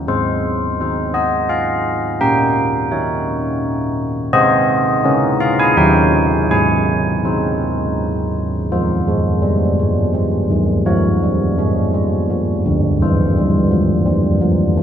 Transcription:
0.08 0.77 G#3 medium
0.08 0.80 C5 medium
0.80 2.18 D#4 soft
0.80 2.18 C5 soft
1.14 1.49 D#5 medium
1.49 2.18 F5 medium
2.21 2.90 A#3 medium
2.21 3.93 G5 medium
2.92 4.28 D#4 soft
2.92 4.28 C#5 soft
4.33 5.02 C4 medium
4.33 5.00 G#4 medium
4.33 5.00 C5 medium
4.33 5.36 D#5 loud
5.04 5.74 C#4 medium
5.04 5.72 G#4 medium
5.04 5.72 A#4 medium
5.40 5.58 F5 medium
5.60 5.77 G#5 loud
5.77 6.48 D#3 medium
5.77 6.46 D#4 soft
5.77 6.46 C#5 soft
5.77 6.47 G5 medium
6.51 7.22 G#3 medium
6.51 8.31 G#5 medium
7.25 8.67 D#4 soft
7.25 8.68 C5 soft
8.72 9.00 F3 medium
8.72 10.83 C5 soft
9.08 9.36 G#3 medium
9.42 9.71 G3 medium
9.79 10.08 G#3 medium
10.14 10.43 G3 medium
10.51 10.79 D#3 medium
10.86 11.15 F3 medium
10.86 12.95 C#5 soft
11.23 11.51 G3 medium
11.59 11.87 G#3 medium
11.94 12.22 G3 medium
12.30 12.58 F3 medium
12.66 12.93 D3 medium
13.02 13.29 E3 medium
13.02 14.83 C5 soft
13.37 13.65 G3 medium
13.71 13.99 F3 medium
14.06 14.34 G3 medium
14.41 14.69 F3 medium
14.78 14.83 E3 medium

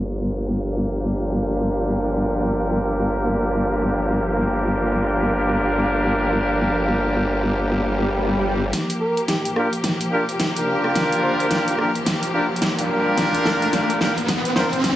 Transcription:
0.00 8.71 G1 medium
0.00 8.69 F3 medium
0.00 4.26 A#3 medium
0.00 8.69 A#3 medium
0.00 4.26 D4 medium
0.00 4.26 F4 medium
0.00 4.26 G4 medium
0.00 8.69 G4 medium
0.00 4.26 A#4 medium
4.28 8.70 A#3 medium
4.28 8.70 D4 medium
4.28 8.70 F4 medium
4.28 8.70 G4 medium
4.28 8.70 A#4 loud
7.62 swell medium
8.73 14.96 F3 medium
8.73 14.96 A#3 medium
8.73 14.96 G4 medium
8.73 snare soft
8.73 closed hi-hat medium
8.73 riser medium
8.90 closed hi-hat medium
9.00 9.22 A#4 medium
9.17 closed hi-hat soft
9.28 9.39 G4 medium
9.28 snare soft
9.28 closed hi-hat medium
9.45 9.52 G4 medium
9.45 closed hi-hat soft
9.56 9.68 A#3 medium
9.56 9.68 D4 medium
9.56 9.68 F4 medium
9.56 9.68 G4 medium
9.56 9.68 A#4 loud
9.56 cross-stick soft
9.73 closed hi-hat soft
9.84 snare medium
9.84 closed hi-hat medium
10.01 closed hi-hat medium
10.11 10.23 A#3 medium
10.11 10.23 D4 medium
10.11 10.23 F4 medium
10.11 10.23 G4 medium
10.11 10.23 A#4 loud
10.29 closed hi-hat soft
10.40 snare medium
10.40 closed hi-hat medium
10.56 11.76 A#3 loud
10.56 11.76 D4 loud
10.56 11.76 F4 loud
10.56 11.76 G4 loud
10.56 11.76 A#4 loud
10.56 closed hi-hat medium
10.84 cross-stick soft
10.95 snare medium
10.95 closed hi-hat medium
11.12 closed hi-hat medium
11.22 11.34 C5 medium
11.40 11.47 C5 medium
11.40 closed hi-hat soft
11.51 snare medium
11.51 closed hi-hat medium
11.68 closed hi-hat soft
11.78 11.90 A#3 medium
11.78 11.90 D4 medium
11.78 11.90 F4 medium
11.78 11.90 G4 medium
11.78 11.90 A#4 loud
11.78 cross-stick soft
11.95 closed hi-hat soft
12.06 snare medium
12.06 closed hi-hat medium
12.23 closed hi-hat medium
12.34 12.45 A#3 loud
12.34 12.46 D4 loud
12.34 12.45 F4 medium
12.34 12.45 G4 medium
12.34 12.45 A#4 loud
12.56 closed hi-hat soft
12.62 snare medium
12.62 closed hi-hat medium
12.78 13.98 A#3 loud
12.78 13.98 D4 loud
12.78 13.98 F4 loud
12.78 13.98 G4 loud
12.78 13.98 A#4 loud
12.78 closed hi-hat medium
13.18 snare medium
13.18 closed hi-hat medium
13.35 closed hi-hat medium
13.45 13.66 A#4 medium
13.45 snare medium
13.62 closed hi-hat soft
13.73 snare medium
13.73 closed hi-hat medium
13.90 closed hi-hat soft
14.00 14.12 A#3 medium
14.00 14.12 D4 medium
14.00 14.12 F4 medium
14.00 14.12 G4 medium
14.00 14.12 A#4 loud
14.00 snare medium
14.18 closed hi-hat soft
14.28 snare medium
14.28 closed hi-hat medium
14.45 closed hi-hat medium
14.56 14.68 A#3 medium
14.56 14.68 D4 loud
14.56 14.68 F4 medium
14.56 14.68 G4 medium
14.56 14.68 A#4 loud
14.56 14.67 C5 medium
14.56 snare medium
14.73 14.80 C5 medium
14.73 closed hi-hat soft
14.84 snare medium
14.84 closed hi-hat medium

